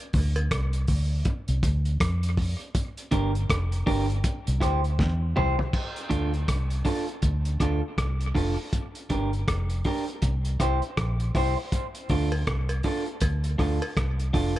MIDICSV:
0, 0, Header, 1, 5, 480
1, 0, Start_track
1, 0, Key_signature, -1, "minor"
1, 0, Tempo, 747198
1, 1766, Time_signature, 4, 2, 24, 8
1, 9374, End_track
2, 0, Start_track
2, 0, Title_t, "Clean electric guitar"
2, 0, Program_c, 0, 27
2, 2000, Note_on_c, 0, 62, 94
2, 2005, Note_on_c, 0, 67, 90
2, 2006, Note_on_c, 0, 70, 112
2, 2125, Note_off_c, 0, 62, 0
2, 2127, Note_off_c, 0, 67, 0
2, 2128, Note_off_c, 0, 70, 0
2, 2482, Note_on_c, 0, 62, 79
2, 2485, Note_on_c, 0, 67, 95
2, 2486, Note_on_c, 0, 70, 89
2, 2606, Note_off_c, 0, 62, 0
2, 2607, Note_off_c, 0, 67, 0
2, 2608, Note_off_c, 0, 70, 0
2, 2958, Note_on_c, 0, 64, 71
2, 2963, Note_on_c, 0, 67, 98
2, 2967, Note_on_c, 0, 72, 91
2, 3084, Note_off_c, 0, 64, 0
2, 3086, Note_off_c, 0, 67, 0
2, 3088, Note_off_c, 0, 72, 0
2, 3443, Note_on_c, 0, 64, 86
2, 3445, Note_on_c, 0, 67, 88
2, 3450, Note_on_c, 0, 72, 94
2, 3566, Note_off_c, 0, 64, 0
2, 3567, Note_off_c, 0, 67, 0
2, 3569, Note_off_c, 0, 72, 0
2, 3916, Note_on_c, 0, 62, 83
2, 3919, Note_on_c, 0, 65, 93
2, 3921, Note_on_c, 0, 69, 84
2, 4042, Note_off_c, 0, 62, 0
2, 4044, Note_off_c, 0, 65, 0
2, 4045, Note_off_c, 0, 69, 0
2, 4399, Note_on_c, 0, 62, 80
2, 4403, Note_on_c, 0, 65, 93
2, 4406, Note_on_c, 0, 69, 100
2, 4524, Note_off_c, 0, 62, 0
2, 4526, Note_off_c, 0, 65, 0
2, 4528, Note_off_c, 0, 69, 0
2, 4883, Note_on_c, 0, 62, 83
2, 4888, Note_on_c, 0, 65, 81
2, 4892, Note_on_c, 0, 69, 86
2, 5006, Note_off_c, 0, 62, 0
2, 5009, Note_off_c, 0, 65, 0
2, 5011, Note_off_c, 0, 69, 0
2, 5362, Note_on_c, 0, 62, 73
2, 5364, Note_on_c, 0, 65, 86
2, 5369, Note_on_c, 0, 69, 91
2, 5486, Note_off_c, 0, 62, 0
2, 5487, Note_off_c, 0, 65, 0
2, 5490, Note_off_c, 0, 69, 0
2, 5845, Note_on_c, 0, 62, 70
2, 5850, Note_on_c, 0, 67, 84
2, 5855, Note_on_c, 0, 70, 93
2, 5968, Note_off_c, 0, 62, 0
2, 5971, Note_off_c, 0, 67, 0
2, 5973, Note_off_c, 0, 70, 0
2, 6328, Note_on_c, 0, 62, 81
2, 6333, Note_on_c, 0, 67, 89
2, 6336, Note_on_c, 0, 70, 91
2, 6450, Note_off_c, 0, 62, 0
2, 6452, Note_off_c, 0, 67, 0
2, 6454, Note_off_c, 0, 70, 0
2, 6808, Note_on_c, 0, 64, 72
2, 6812, Note_on_c, 0, 67, 77
2, 6817, Note_on_c, 0, 72, 74
2, 6930, Note_off_c, 0, 64, 0
2, 6933, Note_off_c, 0, 67, 0
2, 6935, Note_off_c, 0, 72, 0
2, 7292, Note_on_c, 0, 64, 88
2, 7295, Note_on_c, 0, 67, 79
2, 7301, Note_on_c, 0, 72, 89
2, 7413, Note_off_c, 0, 64, 0
2, 7414, Note_off_c, 0, 67, 0
2, 7417, Note_off_c, 0, 72, 0
2, 7773, Note_on_c, 0, 62, 80
2, 7776, Note_on_c, 0, 65, 85
2, 7779, Note_on_c, 0, 69, 83
2, 7894, Note_off_c, 0, 62, 0
2, 7895, Note_off_c, 0, 65, 0
2, 7897, Note_off_c, 0, 69, 0
2, 8250, Note_on_c, 0, 62, 83
2, 8253, Note_on_c, 0, 65, 88
2, 8259, Note_on_c, 0, 69, 105
2, 8373, Note_off_c, 0, 62, 0
2, 8374, Note_off_c, 0, 65, 0
2, 8377, Note_off_c, 0, 69, 0
2, 8726, Note_on_c, 0, 62, 65
2, 8730, Note_on_c, 0, 65, 76
2, 8735, Note_on_c, 0, 69, 89
2, 8851, Note_off_c, 0, 62, 0
2, 8853, Note_off_c, 0, 65, 0
2, 8856, Note_off_c, 0, 69, 0
2, 9208, Note_on_c, 0, 62, 79
2, 9211, Note_on_c, 0, 65, 88
2, 9216, Note_on_c, 0, 69, 86
2, 9333, Note_off_c, 0, 62, 0
2, 9334, Note_off_c, 0, 65, 0
2, 9337, Note_off_c, 0, 69, 0
2, 9374, End_track
3, 0, Start_track
3, 0, Title_t, "Fingered electric bass"
3, 0, Program_c, 1, 33
3, 93, Note_on_c, 1, 38, 108
3, 304, Note_off_c, 1, 38, 0
3, 333, Note_on_c, 1, 36, 95
3, 544, Note_off_c, 1, 36, 0
3, 571, Note_on_c, 1, 38, 79
3, 783, Note_off_c, 1, 38, 0
3, 955, Note_on_c, 1, 36, 88
3, 1038, Note_off_c, 1, 36, 0
3, 1052, Note_on_c, 1, 38, 99
3, 1263, Note_off_c, 1, 38, 0
3, 1290, Note_on_c, 1, 41, 91
3, 1630, Note_off_c, 1, 41, 0
3, 2009, Note_on_c, 1, 31, 99
3, 2221, Note_off_c, 1, 31, 0
3, 2250, Note_on_c, 1, 29, 93
3, 2461, Note_off_c, 1, 29, 0
3, 2488, Note_on_c, 1, 31, 97
3, 2701, Note_off_c, 1, 31, 0
3, 2877, Note_on_c, 1, 36, 89
3, 2959, Note_off_c, 1, 36, 0
3, 2970, Note_on_c, 1, 38, 92
3, 3211, Note_off_c, 1, 38, 0
3, 3211, Note_on_c, 1, 40, 94
3, 3422, Note_off_c, 1, 40, 0
3, 3450, Note_on_c, 1, 36, 92
3, 3576, Note_off_c, 1, 36, 0
3, 3927, Note_on_c, 1, 38, 94
3, 4140, Note_off_c, 1, 38, 0
3, 4166, Note_on_c, 1, 36, 88
3, 4379, Note_off_c, 1, 36, 0
3, 4646, Note_on_c, 1, 38, 101
3, 4859, Note_off_c, 1, 38, 0
3, 4887, Note_on_c, 1, 38, 84
3, 5015, Note_off_c, 1, 38, 0
3, 5128, Note_on_c, 1, 36, 89
3, 5341, Note_off_c, 1, 36, 0
3, 5369, Note_on_c, 1, 29, 85
3, 5496, Note_off_c, 1, 29, 0
3, 5850, Note_on_c, 1, 31, 94
3, 6062, Note_off_c, 1, 31, 0
3, 6092, Note_on_c, 1, 29, 91
3, 6304, Note_off_c, 1, 29, 0
3, 6572, Note_on_c, 1, 36, 106
3, 6784, Note_off_c, 1, 36, 0
3, 6812, Note_on_c, 1, 36, 88
3, 6939, Note_off_c, 1, 36, 0
3, 7053, Note_on_c, 1, 34, 92
3, 7265, Note_off_c, 1, 34, 0
3, 7292, Note_on_c, 1, 36, 91
3, 7419, Note_off_c, 1, 36, 0
3, 7775, Note_on_c, 1, 38, 91
3, 7987, Note_off_c, 1, 38, 0
3, 8015, Note_on_c, 1, 36, 90
3, 8227, Note_off_c, 1, 36, 0
3, 8492, Note_on_c, 1, 38, 108
3, 8706, Note_off_c, 1, 38, 0
3, 8733, Note_on_c, 1, 38, 93
3, 8861, Note_off_c, 1, 38, 0
3, 8975, Note_on_c, 1, 36, 93
3, 9188, Note_off_c, 1, 36, 0
3, 9215, Note_on_c, 1, 29, 83
3, 9343, Note_off_c, 1, 29, 0
3, 9374, End_track
4, 0, Start_track
4, 0, Title_t, "Muted clean electric guitar strokes"
4, 2632, Note_on_c, 9, 29, 53
4, 2696, Note_off_c, 9, 29, 0
4, 4548, Note_on_c, 9, 29, 52
4, 4612, Note_off_c, 9, 29, 0
4, 6474, Note_on_c, 9, 29, 53
4, 6538, Note_off_c, 9, 29, 0
4, 7438, Note_on_c, 9, 29, 45
4, 7502, Note_off_c, 9, 29, 0
4, 8393, Note_on_c, 9, 29, 47
4, 8457, Note_off_c, 9, 29, 0
4, 9374, End_track
5, 0, Start_track
5, 0, Title_t, "Drums"
5, 85, Note_on_c, 9, 46, 61
5, 89, Note_on_c, 9, 36, 96
5, 149, Note_off_c, 9, 46, 0
5, 153, Note_off_c, 9, 36, 0
5, 231, Note_on_c, 9, 56, 67
5, 233, Note_on_c, 9, 42, 36
5, 295, Note_off_c, 9, 56, 0
5, 297, Note_off_c, 9, 42, 0
5, 328, Note_on_c, 9, 36, 98
5, 329, Note_on_c, 9, 42, 92
5, 332, Note_on_c, 9, 37, 110
5, 392, Note_off_c, 9, 36, 0
5, 393, Note_off_c, 9, 42, 0
5, 396, Note_off_c, 9, 37, 0
5, 469, Note_on_c, 9, 42, 51
5, 534, Note_off_c, 9, 42, 0
5, 562, Note_on_c, 9, 46, 66
5, 567, Note_on_c, 9, 36, 83
5, 626, Note_off_c, 9, 46, 0
5, 632, Note_off_c, 9, 36, 0
5, 803, Note_on_c, 9, 42, 78
5, 806, Note_on_c, 9, 36, 112
5, 867, Note_off_c, 9, 42, 0
5, 871, Note_off_c, 9, 36, 0
5, 950, Note_on_c, 9, 42, 57
5, 1014, Note_off_c, 9, 42, 0
5, 1047, Note_on_c, 9, 36, 102
5, 1050, Note_on_c, 9, 42, 88
5, 1111, Note_off_c, 9, 36, 0
5, 1114, Note_off_c, 9, 42, 0
5, 1191, Note_on_c, 9, 42, 36
5, 1255, Note_off_c, 9, 42, 0
5, 1287, Note_on_c, 9, 36, 124
5, 1290, Note_on_c, 9, 42, 93
5, 1291, Note_on_c, 9, 37, 124
5, 1352, Note_off_c, 9, 36, 0
5, 1354, Note_off_c, 9, 42, 0
5, 1355, Note_off_c, 9, 37, 0
5, 1433, Note_on_c, 9, 42, 55
5, 1497, Note_off_c, 9, 42, 0
5, 1526, Note_on_c, 9, 36, 107
5, 1529, Note_on_c, 9, 46, 76
5, 1590, Note_off_c, 9, 36, 0
5, 1593, Note_off_c, 9, 46, 0
5, 1669, Note_on_c, 9, 42, 35
5, 1734, Note_off_c, 9, 42, 0
5, 1764, Note_on_c, 9, 42, 96
5, 1765, Note_on_c, 9, 36, 120
5, 1829, Note_off_c, 9, 36, 0
5, 1829, Note_off_c, 9, 42, 0
5, 1911, Note_on_c, 9, 42, 52
5, 1975, Note_off_c, 9, 42, 0
5, 2002, Note_on_c, 9, 42, 83
5, 2005, Note_on_c, 9, 36, 94
5, 2066, Note_off_c, 9, 42, 0
5, 2070, Note_off_c, 9, 36, 0
5, 2153, Note_on_c, 9, 42, 37
5, 2217, Note_off_c, 9, 42, 0
5, 2246, Note_on_c, 9, 36, 92
5, 2248, Note_on_c, 9, 42, 81
5, 2251, Note_on_c, 9, 37, 120
5, 2310, Note_off_c, 9, 36, 0
5, 2312, Note_off_c, 9, 42, 0
5, 2315, Note_off_c, 9, 37, 0
5, 2391, Note_on_c, 9, 42, 48
5, 2455, Note_off_c, 9, 42, 0
5, 2486, Note_on_c, 9, 36, 95
5, 2486, Note_on_c, 9, 46, 73
5, 2550, Note_off_c, 9, 36, 0
5, 2550, Note_off_c, 9, 46, 0
5, 2633, Note_on_c, 9, 42, 37
5, 2697, Note_off_c, 9, 42, 0
5, 2723, Note_on_c, 9, 42, 88
5, 2724, Note_on_c, 9, 36, 110
5, 2787, Note_off_c, 9, 42, 0
5, 2789, Note_off_c, 9, 36, 0
5, 2872, Note_on_c, 9, 42, 55
5, 2936, Note_off_c, 9, 42, 0
5, 2965, Note_on_c, 9, 36, 99
5, 2970, Note_on_c, 9, 42, 88
5, 2971, Note_on_c, 9, 37, 67
5, 3029, Note_off_c, 9, 36, 0
5, 3034, Note_off_c, 9, 42, 0
5, 3036, Note_off_c, 9, 37, 0
5, 3111, Note_on_c, 9, 42, 35
5, 3175, Note_off_c, 9, 42, 0
5, 3206, Note_on_c, 9, 36, 127
5, 3210, Note_on_c, 9, 38, 61
5, 3270, Note_off_c, 9, 36, 0
5, 3275, Note_off_c, 9, 38, 0
5, 3448, Note_on_c, 9, 45, 108
5, 3512, Note_off_c, 9, 45, 0
5, 3591, Note_on_c, 9, 43, 95
5, 3655, Note_off_c, 9, 43, 0
5, 3683, Note_on_c, 9, 36, 100
5, 3685, Note_on_c, 9, 49, 78
5, 3748, Note_off_c, 9, 36, 0
5, 3749, Note_off_c, 9, 49, 0
5, 3830, Note_on_c, 9, 42, 49
5, 3895, Note_off_c, 9, 42, 0
5, 3922, Note_on_c, 9, 42, 73
5, 3924, Note_on_c, 9, 36, 82
5, 3987, Note_off_c, 9, 42, 0
5, 3988, Note_off_c, 9, 36, 0
5, 4070, Note_on_c, 9, 42, 32
5, 4134, Note_off_c, 9, 42, 0
5, 4164, Note_on_c, 9, 36, 93
5, 4164, Note_on_c, 9, 42, 78
5, 4167, Note_on_c, 9, 37, 101
5, 4228, Note_off_c, 9, 36, 0
5, 4228, Note_off_c, 9, 42, 0
5, 4231, Note_off_c, 9, 37, 0
5, 4307, Note_on_c, 9, 42, 46
5, 4371, Note_off_c, 9, 42, 0
5, 4399, Note_on_c, 9, 46, 67
5, 4404, Note_on_c, 9, 36, 81
5, 4463, Note_off_c, 9, 46, 0
5, 4468, Note_off_c, 9, 36, 0
5, 4547, Note_on_c, 9, 42, 33
5, 4612, Note_off_c, 9, 42, 0
5, 4639, Note_on_c, 9, 42, 74
5, 4643, Note_on_c, 9, 36, 99
5, 4703, Note_off_c, 9, 42, 0
5, 4707, Note_off_c, 9, 36, 0
5, 4788, Note_on_c, 9, 42, 49
5, 4852, Note_off_c, 9, 42, 0
5, 4884, Note_on_c, 9, 36, 88
5, 4885, Note_on_c, 9, 42, 77
5, 4886, Note_on_c, 9, 37, 61
5, 4948, Note_off_c, 9, 36, 0
5, 4949, Note_off_c, 9, 42, 0
5, 4950, Note_off_c, 9, 37, 0
5, 5125, Note_on_c, 9, 36, 104
5, 5128, Note_on_c, 9, 37, 106
5, 5128, Note_on_c, 9, 42, 87
5, 5190, Note_off_c, 9, 36, 0
5, 5192, Note_off_c, 9, 37, 0
5, 5192, Note_off_c, 9, 42, 0
5, 5271, Note_on_c, 9, 42, 49
5, 5336, Note_off_c, 9, 42, 0
5, 5366, Note_on_c, 9, 36, 87
5, 5370, Note_on_c, 9, 46, 70
5, 5430, Note_off_c, 9, 36, 0
5, 5434, Note_off_c, 9, 46, 0
5, 5607, Note_on_c, 9, 36, 98
5, 5608, Note_on_c, 9, 42, 86
5, 5671, Note_off_c, 9, 36, 0
5, 5672, Note_off_c, 9, 42, 0
5, 5750, Note_on_c, 9, 42, 47
5, 5814, Note_off_c, 9, 42, 0
5, 5844, Note_on_c, 9, 42, 72
5, 5848, Note_on_c, 9, 36, 91
5, 5908, Note_off_c, 9, 42, 0
5, 5912, Note_off_c, 9, 36, 0
5, 5994, Note_on_c, 9, 42, 33
5, 6058, Note_off_c, 9, 42, 0
5, 6088, Note_on_c, 9, 36, 86
5, 6089, Note_on_c, 9, 42, 74
5, 6092, Note_on_c, 9, 37, 103
5, 6152, Note_off_c, 9, 36, 0
5, 6153, Note_off_c, 9, 42, 0
5, 6156, Note_off_c, 9, 37, 0
5, 6229, Note_on_c, 9, 42, 48
5, 6293, Note_off_c, 9, 42, 0
5, 6324, Note_on_c, 9, 46, 71
5, 6328, Note_on_c, 9, 36, 88
5, 6388, Note_off_c, 9, 46, 0
5, 6393, Note_off_c, 9, 36, 0
5, 6473, Note_on_c, 9, 42, 33
5, 6537, Note_off_c, 9, 42, 0
5, 6565, Note_on_c, 9, 42, 71
5, 6569, Note_on_c, 9, 36, 103
5, 6629, Note_off_c, 9, 42, 0
5, 6633, Note_off_c, 9, 36, 0
5, 6711, Note_on_c, 9, 42, 53
5, 6776, Note_off_c, 9, 42, 0
5, 6808, Note_on_c, 9, 36, 89
5, 6809, Note_on_c, 9, 42, 79
5, 6811, Note_on_c, 9, 37, 65
5, 6873, Note_off_c, 9, 36, 0
5, 6874, Note_off_c, 9, 42, 0
5, 6875, Note_off_c, 9, 37, 0
5, 6951, Note_on_c, 9, 42, 33
5, 7015, Note_off_c, 9, 42, 0
5, 7049, Note_on_c, 9, 42, 86
5, 7050, Note_on_c, 9, 36, 116
5, 7050, Note_on_c, 9, 37, 106
5, 7113, Note_off_c, 9, 42, 0
5, 7114, Note_off_c, 9, 36, 0
5, 7114, Note_off_c, 9, 37, 0
5, 7194, Note_on_c, 9, 42, 52
5, 7258, Note_off_c, 9, 42, 0
5, 7290, Note_on_c, 9, 36, 102
5, 7291, Note_on_c, 9, 46, 66
5, 7354, Note_off_c, 9, 36, 0
5, 7355, Note_off_c, 9, 46, 0
5, 7531, Note_on_c, 9, 36, 101
5, 7531, Note_on_c, 9, 42, 91
5, 7595, Note_off_c, 9, 36, 0
5, 7595, Note_off_c, 9, 42, 0
5, 7675, Note_on_c, 9, 42, 52
5, 7739, Note_off_c, 9, 42, 0
5, 7767, Note_on_c, 9, 46, 54
5, 7771, Note_on_c, 9, 36, 89
5, 7831, Note_off_c, 9, 46, 0
5, 7835, Note_off_c, 9, 36, 0
5, 7914, Note_on_c, 9, 56, 67
5, 7978, Note_off_c, 9, 56, 0
5, 8011, Note_on_c, 9, 36, 90
5, 8011, Note_on_c, 9, 42, 75
5, 8013, Note_on_c, 9, 37, 108
5, 8075, Note_off_c, 9, 42, 0
5, 8076, Note_off_c, 9, 36, 0
5, 8078, Note_off_c, 9, 37, 0
5, 8153, Note_on_c, 9, 42, 47
5, 8153, Note_on_c, 9, 56, 63
5, 8217, Note_off_c, 9, 42, 0
5, 8217, Note_off_c, 9, 56, 0
5, 8244, Note_on_c, 9, 46, 68
5, 8250, Note_on_c, 9, 36, 85
5, 8308, Note_off_c, 9, 46, 0
5, 8314, Note_off_c, 9, 36, 0
5, 8391, Note_on_c, 9, 42, 33
5, 8456, Note_off_c, 9, 42, 0
5, 8483, Note_on_c, 9, 42, 79
5, 8490, Note_on_c, 9, 36, 103
5, 8490, Note_on_c, 9, 56, 78
5, 8547, Note_off_c, 9, 42, 0
5, 8554, Note_off_c, 9, 36, 0
5, 8554, Note_off_c, 9, 56, 0
5, 8633, Note_on_c, 9, 42, 50
5, 8697, Note_off_c, 9, 42, 0
5, 8731, Note_on_c, 9, 36, 90
5, 8732, Note_on_c, 9, 46, 55
5, 8733, Note_on_c, 9, 37, 66
5, 8795, Note_off_c, 9, 36, 0
5, 8796, Note_off_c, 9, 46, 0
5, 8797, Note_off_c, 9, 37, 0
5, 8878, Note_on_c, 9, 56, 75
5, 8943, Note_off_c, 9, 56, 0
5, 8972, Note_on_c, 9, 36, 105
5, 8975, Note_on_c, 9, 37, 114
5, 8975, Note_on_c, 9, 42, 95
5, 9037, Note_off_c, 9, 36, 0
5, 9039, Note_off_c, 9, 42, 0
5, 9040, Note_off_c, 9, 37, 0
5, 9119, Note_on_c, 9, 42, 51
5, 9183, Note_off_c, 9, 42, 0
5, 9212, Note_on_c, 9, 36, 92
5, 9215, Note_on_c, 9, 46, 70
5, 9276, Note_off_c, 9, 36, 0
5, 9280, Note_off_c, 9, 46, 0
5, 9374, End_track
0, 0, End_of_file